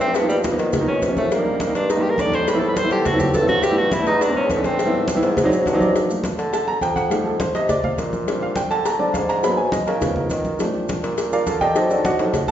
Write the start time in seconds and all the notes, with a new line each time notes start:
Already playing: G2 G3 A3 C4 D4
0.01 C4, cowbell, maracas
0.15 B3, cowbell, high conga, maracas
0.21 F3 A#3 B3 D#4
0.29 G3, high conga, maracas
0.44 cowbell, high conga, maracas
0.51 F3 A#3 B3 D#4
0.59 D#3, cowbell, high conga, maracas
0.73 cowbell, high conga, low conga, maracas
0.80 F3 A#3 B3 D#4
0.88 C#4, high conga
1.02 C3 B3, cowbell, high conga, maracas
1.08 F3 A#3 B3 C#4
1.17 A3, high conga, maracas
1.32 A#3, cowbell, high conga, maracas
1.37 G3 A#3 D4 D#4
1.46 high conga
1.60 cowbell, high conga, maracas
1.67 G3 A#3 D4 D#4
1.75 G2 D4, cowbell, maracas
1.90 D#4, cowbell, high conga, maracas
1.96 G3 A#3 D4 D#4
2.01 G4, high conga
2.10 A#4
2.18 A2 D5, cowbell, high conga, maracas
2.25 G3 A#3 D4 D#4
2.32 C5, cowbell, high conga, maracas
2.47 B4, cowbell, high conga, maracas
2.54 G3 B3 C4 E4
2.59 A4, high conga
2.68 B4
2.76 C5, cowbell, high conga, maracas
2.83 G3 B3 C4 E4
2.91 D3 G4, cowbell, high conga, maracas
3.05 F#4, cowbell, high conga, low conga, maracas
3.13 F#3 B3 C4 E4
3.20 G4, high conga, low conga, maracas
3.34 G2 A4, cowbell, high conga, maracas
3.41 F#3 B3 C4 E4
3.48 F#4, high conga, maracas
3.63 G4, cowbell, high conga, maracas
3.70 A3 B3 D4 E4
3.78 F#4, high conga
3.91 E4, cowbell, high conga, maracas
3.99 A3 B3 D4 E4
4.07 E2 D#4, cowbell, maracas
4.21 D4, cowbell, high conga, maracas
4.28 G#3 B3 C4 D4
4.35 C#4, high conga
4.49 A2 B3, cowbell, high conga, maracas
4.57 G#3 B3 C4 D4
4.64 C4, cowbell, high conga, maracas
4.78 cowbell, high conga, maracas
4.85 G3 B3 C4 E4
4.93 high conga
5.08 cowbell, high conga, maracas
5.15 G3 B3 C4 E4
5.23 G#2, cowbell, high conga, maracas
5.37 cowbell, high conga, low conga, maracas
5.44 F#3 C4 D4 D#4
5.51 high conga, maracas
5.66 G2 F#5, cowbell, high conga, maracas
5.73 F#3 C4 D4 D#4
5.81 D5, high conga, maracas
5.95 cowbell, high conga, maracas
6.09 A3 A#3 F4, high conga, maracas
6.24 cowbell, high conga, maracas
6.38 D3, cowbell, maracas
6.53 A5, cowbell, high conga, maracas
6.67 A#5, high conga
6.81 F2 G5, cowbell, high conga, maracas
6.96 F#5, cowbell, high conga, maracas
7.10 G3 A3 D#4 F5, cowbell, high conga, maracas
7.25 A4, high conga
7.40 C5, cowbell, high conga, maracas
7.54 C3 D#5, cowbell, high conga, maracas
7.69 D5, cowbell, high conga, low conga, maracas
7.84 C3 F5, high conga, low conga
7.98 A#2, cowbell, high conga, maracas
8.13 high conga, maracas
8.27 G3 C4 D4, cowbell, high conga, maracas
8.42 F5, high conga
8.56 G5, cowbell, high conga, maracas
8.71 D3 A5, cowbell, maracas
8.85 A#5, cowbell, high conga, maracas
8.99 G3 C4 D4 D5, high conga
9.14 G#2 F5, cowbell, high conga, maracas
9.29 A#5, cowbell, maracas
9.43 F#3 A#3 B3 B5, cowbell, high conga, maracas
9.57 G#5, high conga
9.72 D#5, cowbell, high conga, maracas
9.87 C#3 A#4, cowbell, high conga, maracas
10.01 F3 B3 D#4, cowbell, high conga, low conga, maracas
10.16 C#3, high conga, low conga
10.30 D#3, cowbell, high conga, maracas
10.45 high conga, maracas
10.59 F3 G3 A3 D4, cowbell, high conga, maracas
10.74 high conga
10.89 cowbell, high conga, maracas
11.03 A#2, cowbell, maracas
11.18 cowbell, high conga, maracas
11.32 F4 A#4 D5 F5, high conga, maracas
11.47 D3, cowbell, high conga, maracas
11.61 G4 D5 D#5 G5, cowbell, high conga, maracas
11.75 F#3 C4 D#4 A4 C5 D#5, cowbell, high conga, maracas
11.90 D4 F#4 A4 D5, high conga, maracas
12.05 F#4 D5 D#5 F#5, cowbell, high conga, maracas
12.19 A2 F#3 C4 D#4, cowbell, high conga, maracas
12.33 cowbell, high conga, low conga, maracas